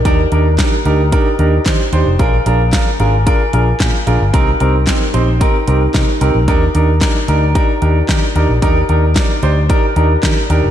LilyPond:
<<
  \new Staff \with { instrumentName = "Grand piano" } { \time 4/4 \key ees \major \tempo 4 = 112 <d' ees' g' bes'>16 r16 <d' ees' g' bes'>16 r16 <d' ees' g' bes'>16 r16 <d' ees' g' bes'>16 r16 <d' ees' g' bes'>16 r16 <d' ees' g' bes'>16 r16 <d' ees' g' c''>16 r16 <d' ees' g' c''>16 r16 | <d' f' aes' bes'>16 r16 <d' f' aes' bes'>16 r16 <d' f' aes' bes'>16 r16 <d' f' aes' bes'>16 r16 <d' f' aes' bes'>16 r16 <d' f' aes' bes'>16 r16 <d' f' aes' bes'>16 r16 <d' f' aes' bes'>16 r16 | <c' ees' g' bes'>16 r16 <c' ees' g' bes'>16 r16 <c' ees' g' bes'>16 r16 <c' ees' g' c''>16 r16 <c' ees' g' bes'>16 r16 <c' ees' g' bes'>16 r16 <c' ees' g' bes'>16 r16 <c' ees' g' bes'>16 r16 | <d' ees' g' bes'>16 r16 <d' ees' g' bes'>16 r16 <d' ees' g' bes'>16 r16 <d' ees' g' bes'>16 r16 <d' ees' g' bes'>16 r16 <d' ees' g' bes'>16 r16 <d' ees' g' bes'>16 r16 <d' ees' g' bes'>16 r16 |
<d' ees' g' bes'>16 r16 <d' ees' g' bes'>16 r16 <d' ees' g' bes'>16 r16 <d' ees' g' c''>16 r16 <d' ees' g' bes'>16 r16 <d' ees' g' bes'>16 r16 <d' ees' g' bes'>16 r16 <d' ees' g' bes'>16 r16 | }
  \new Staff \with { instrumentName = "Fingered electric bass" } { \clef bass \time 4/4 \key ees \major ees,8 ees,8. r16 d,8. r16 ees,8 ees16 r16 ees,16 f,,16 | r8 bes,,8. r16 aes,,8. r16 bes,,8 bes,16 r16 bes,,16 g,,16 | c,8 c,8. r16 bes,,8. r16 c,8 c16 r16 c,16 bes,,16 | ees,8 ees,8. r16 d,8. r16 ees,8 ees16 r16 ees,16 bes,,16 |
ees,8 ees,8. r16 d,8. r16 ees,8 ees16 r16 ees,16 f,,16 | }
  \new DrumStaff \with { instrumentName = "Drums" } \drummode { \time 4/4 <hh bd>8 hh8 <hc hh bd sn>8 hh8 <hh bd>8 hh8 <hc hh bd sn>8 hh8 | <hh bd>8 hh8 <hc hh bd sn>8 hh8 <hh bd>8 hh8 <hc hh bd sn>8 hh8 | <hh bd>8 hh8 <hc hh bd sn>8 hh8 <hh bd>8 hh8 <hc hh bd sn>8 hh8 | <hh bd>8 hh8 <hc hh bd sn>8 hh8 <hh bd>8 hh8 <hc hh bd sn>8 hh8 |
<hh bd>8 hh8 <hc hh bd sn>8 hh8 <hh bd>8 hh8 <hc hh bd sn>8 hh8 | }
>>